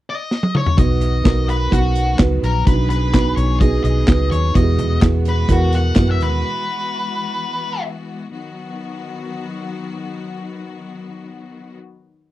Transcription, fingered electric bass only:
0, 0, Header, 1, 2, 480
1, 0, Start_track
1, 0, Key_signature, 5, "major"
1, 0, Tempo, 471328
1, 795, Time_signature, 4, 2, 24, 8
1, 12545, End_track
2, 0, Start_track
2, 0, Title_t, "Fingered electric bass"
2, 0, Program_c, 0, 33
2, 792, Note_on_c, 0, 35, 79
2, 1240, Note_off_c, 0, 35, 0
2, 1275, Note_on_c, 0, 35, 76
2, 1722, Note_off_c, 0, 35, 0
2, 1748, Note_on_c, 0, 35, 77
2, 2198, Note_off_c, 0, 35, 0
2, 2233, Note_on_c, 0, 37, 67
2, 2457, Note_off_c, 0, 37, 0
2, 2469, Note_on_c, 0, 34, 71
2, 2695, Note_off_c, 0, 34, 0
2, 2718, Note_on_c, 0, 35, 87
2, 3400, Note_off_c, 0, 35, 0
2, 3431, Note_on_c, 0, 35, 77
2, 3878, Note_off_c, 0, 35, 0
2, 3909, Note_on_c, 0, 35, 72
2, 4134, Note_off_c, 0, 35, 0
2, 4157, Note_on_c, 0, 37, 73
2, 4378, Note_off_c, 0, 37, 0
2, 4387, Note_on_c, 0, 39, 80
2, 4613, Note_off_c, 0, 39, 0
2, 4634, Note_on_c, 0, 40, 84
2, 5079, Note_off_c, 0, 40, 0
2, 5115, Note_on_c, 0, 40, 81
2, 5559, Note_off_c, 0, 40, 0
2, 5585, Note_on_c, 0, 40, 88
2, 6034, Note_off_c, 0, 40, 0
2, 6070, Note_on_c, 0, 42, 77
2, 6318, Note_off_c, 0, 42, 0
2, 6318, Note_on_c, 0, 39, 79
2, 6538, Note_off_c, 0, 39, 0
2, 12545, End_track
0, 0, End_of_file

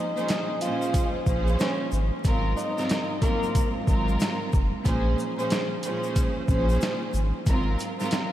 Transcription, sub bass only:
0, 0, Header, 1, 2, 480
1, 0, Start_track
1, 0, Key_signature, -5, "minor"
1, 0, Tempo, 652174
1, 1655, Time_signature, 4, 2, 24, 8
1, 6125, End_track
2, 0, Start_track
2, 0, Title_t, "Sub bass"
2, 0, Program_c, 0, 38
2, 931, Note_on_c, 0, 34, 93
2, 1151, Note_off_c, 0, 34, 0
2, 1416, Note_on_c, 0, 32, 89
2, 1551, Note_off_c, 0, 32, 0
2, 1653, Note_on_c, 0, 32, 109
2, 1872, Note_off_c, 0, 32, 0
2, 2852, Note_on_c, 0, 32, 94
2, 3071, Note_off_c, 0, 32, 0
2, 3337, Note_on_c, 0, 30, 96
2, 3471, Note_off_c, 0, 30, 0
2, 3574, Note_on_c, 0, 34, 108
2, 3792, Note_off_c, 0, 34, 0
2, 4772, Note_on_c, 0, 34, 93
2, 4991, Note_off_c, 0, 34, 0
2, 5254, Note_on_c, 0, 32, 89
2, 5390, Note_off_c, 0, 32, 0
2, 5495, Note_on_c, 0, 32, 107
2, 5712, Note_off_c, 0, 32, 0
2, 6125, End_track
0, 0, End_of_file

